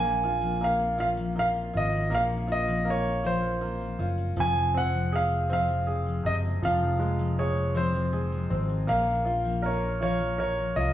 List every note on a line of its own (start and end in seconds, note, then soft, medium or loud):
0.00 1.70 A#1 loud
0.00 0.41 F3 medium
0.00 0.60 A#3 medium
0.00 0.60 C#4 medium
0.00 0.65 G#5 loud
0.23 0.79 C4 medium
0.23 0.96 F4 medium
0.42 0.98 F3 medium
0.61 1.34 A#3 medium
0.61 0.98 C#4 medium
0.61 0.99 F5 medium
0.80 1.36 C4 medium
0.98 1.17 F3 medium
0.98 1.72 C#4 medium
0.98 1.72 F4 medium
0.98 1.09 F5 loud
1.17 1.55 F3 medium
1.36 2.09 A#3 medium
1.36 1.92 C4 medium
1.36 1.47 F5 loud
1.55 2.11 F3 medium
1.73 2.10 G#1 loud
1.73 2.11 C#4 medium
1.73 2.46 F4 medium
1.73 2.11 D#5 medium
1.92 2.48 C4 medium
2.10 3.95 A#1 loud
2.10 2.30 F3 medium
2.10 2.83 A#3 medium
2.10 2.85 C#4 medium
2.15 2.23 F5 loud
2.30 2.67 F3 medium
2.47 3.05 C4 medium
2.47 3.22 F4 medium
2.52 2.89 D#5 loud
2.68 3.24 F3 medium
2.85 3.60 A#3 medium
2.85 3.24 C#4 medium
2.90 3.23 C#5 medium
3.05 3.61 C4 medium
3.23 3.43 F3 medium
3.23 3.98 C#4 medium
3.23 3.98 F4 soft
3.23 4.06 C5 medium
3.43 3.80 F3 medium
3.61 4.34 A#3 soft
3.61 4.18 C4 medium
3.80 4.36 F3 medium
3.99 4.34 F#1 medium
3.99 4.37 C#4 medium
3.99 4.36 F4 medium
4.18 4.37 C4 medium
4.36 6.21 F1 loud
4.36 4.55 F3 medium
4.36 6.58 F3 medium
4.36 5.12 C4 medium
4.36 4.77 G#5 loud
4.55 4.93 F3 medium
4.74 5.30 G#3 medium
4.74 5.48 C4 medium
4.74 5.15 F#5 loud
4.94 5.50 F3 medium
5.12 5.51 C4 medium
5.12 5.85 G#4 medium
5.12 5.52 F5 loud
5.32 5.87 G#3 medium
5.49 5.68 F3 medium
5.49 6.96 C4 medium
5.49 6.26 C4 medium
5.49 6.29 F5 loud
5.69 6.06 F3 medium
5.87 6.44 G#3 medium
5.87 7.33 G#4 medium
6.07 6.63 F3 medium
6.24 6.60 F#1 medium
6.24 7.71 C3 medium
6.24 6.64 C4 medium
6.24 6.35 D#5 loud
6.45 7.00 G#3 medium
6.62 8.46 F1 loud
6.62 8.84 F3 medium
6.62 6.82 F3 medium
6.62 7.75 C4 medium
6.62 7.41 F5 loud
6.83 7.19 F3 medium
6.99 8.46 G#3 medium
6.99 7.56 G#3 medium
7.19 7.74 F3 medium
7.39 8.11 G#4 medium
7.39 7.73 C#5 medium
7.57 8.12 G#3 medium
7.75 7.94 F3 medium
7.75 8.49 C4 medium
7.75 8.50 C4 medium
7.75 8.57 C5 medium
7.94 8.32 F3 medium
8.13 8.68 G#3 medium
8.13 8.86 G#4 medium
8.32 8.88 F3 medium
8.50 8.86 G#1 loud
8.50 8.87 C4 medium
8.50 8.88 C4 medium
8.69 8.96 G#3 medium
8.87 10.72 A#1 loud
8.87 9.07 F3 loud
8.87 10.93 A#3 medium
8.87 9.63 C#4 medium
8.87 9.60 F5 medium
9.07 9.44 F3 medium
9.25 9.83 C4 medium
9.25 9.98 F4 medium
9.45 10.01 F3 medium
9.62 10.02 C#4 medium
9.62 10.37 A#4 medium
9.62 10.01 C#5 medium
10.00 10.20 F3 medium
10.00 10.77 C#4 medium
10.00 10.75 F4 medium
10.00 10.38 C#5 medium
10.20 10.58 F3 medium
10.38 10.93 A#4 medium
10.38 10.78 C#5 medium
10.58 10.93 F3 medium
10.76 10.93 C2 medium
10.76 10.93 C#4 medium
10.76 10.93 F4 medium
10.76 10.93 D#5 medium